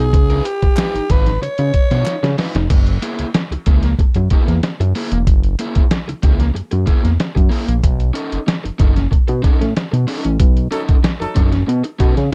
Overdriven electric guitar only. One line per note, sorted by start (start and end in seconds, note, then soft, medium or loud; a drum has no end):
0.13 muted overdriven electric guitar stroke soft
0.30 0.44 D#4 medium
0.30 0.45 F4 medium
0.30 0.45 B4 medium
0.45 muted overdriven electric guitar stroke soft
0.63 muted overdriven electric guitar stroke soft
0.78 1.00 D#4 medium
0.78 0.95 F4 medium
0.78 0.94 B4 loud
0.95 muted overdriven electric guitar stroke soft
1.10 1.28 D#4 medium
1.10 1.27 F4 medium
1.10 1.26 B4 medium
1.27 muted overdriven electric guitar stroke soft
1.42 muted overdriven electric guitar stroke soft
1.59 muted overdriven electric guitar stroke soft
1.91 2.13 D#4 medium
1.91 2.13 F4 medium
1.91 2.12 C#5 medium
2.23 muted overdriven electric guitar stroke medium
2.38 2.61 D#4 medium
2.38 2.56 F4 medium
2.38 2.55 B4 medium
2.56 muted overdriven electric guitar stroke medium
3.02 3.25 A#3 medium
3.02 3.25 E4 medium
3.02 3.25 G#4 medium
3.35 muted overdriven electric guitar stroke soft
3.52 muted overdriven electric guitar stroke soft
3.67 3.89 A#3 medium
3.67 3.84 E4 medium
3.67 3.83 G#4 medium
3.84 muted overdriven electric guitar stroke soft
3.99 muted overdriven electric guitar stroke soft
4.16 muted overdriven electric guitar stroke soft
4.32 4.53 A#3 medium
4.32 4.48 E4 loud
4.32 4.48 G#4 loud
4.49 muted overdriven electric guitar stroke medium
4.80 muted overdriven electric guitar stroke soft
4.95 5.17 A#3 medium
4.95 5.13 E4 medium
4.95 5.11 G#4 loud
5.12 muted overdriven electric guitar stroke soft
5.59 5.81 A#3 medium
5.59 5.82 E4 medium
5.59 5.82 G#4 medium
5.91 muted overdriven electric guitar stroke soft
6.08 muted overdriven electric guitar stroke soft
6.23 6.45 A#3 medium
6.23 6.39 E4 medium
6.23 6.38 G#4 medium
6.40 muted overdriven electric guitar stroke medium
6.54 muted overdriven electric guitar stroke soft
6.71 muted overdriven electric guitar stroke soft
6.86 7.09 A#3 medium
6.86 7.03 E4 medium
6.86 7.02 G#4 medium
7.03 muted overdriven electric guitar stroke soft
7.35 muted overdriven electric guitar stroke medium
7.50 7.73 A#3 medium
7.50 7.67 E4 medium
7.50 7.65 G#4 medium
7.67 muted overdriven electric guitar stroke soft
8.14 8.37 C#4 medium
8.14 8.38 D#4 medium
8.14 8.38 A4 medium
8.47 muted overdriven electric guitar stroke soft
8.64 muted overdriven electric guitar stroke soft
8.79 9.01 C#4 medium
8.79 8.96 D#4 medium
8.79 8.95 A4 medium
8.96 muted overdriven electric guitar stroke soft
9.11 muted overdriven electric guitar stroke medium
9.28 muted overdriven electric guitar stroke medium
9.43 9.65 C#4 medium
9.43 9.60 D#4 loud
9.43 9.59 A4 loud
9.60 muted overdriven electric guitar stroke soft
9.92 muted overdriven electric guitar stroke medium
10.07 10.30 C#4 medium
10.07 10.24 D#4 medium
10.07 10.23 A4 medium
10.24 muted overdriven electric guitar stroke soft
10.71 10.94 C#4 medium
10.71 10.94 D#4 medium
10.71 10.95 A4 medium
11.03 muted overdriven electric guitar stroke soft
11.20 muted overdriven electric guitar stroke medium
11.35 11.58 C#4 medium
11.35 11.52 D#4 medium
11.35 11.51 A4 medium
11.52 muted overdriven electric guitar stroke soft
11.67 muted overdriven electric guitar stroke soft
11.84 muted overdriven electric guitar stroke medium
11.99 12.22 C#4 medium
11.99 12.16 D#4 medium
11.99 12.15 A4 medium
12.16 muted overdriven electric guitar stroke medium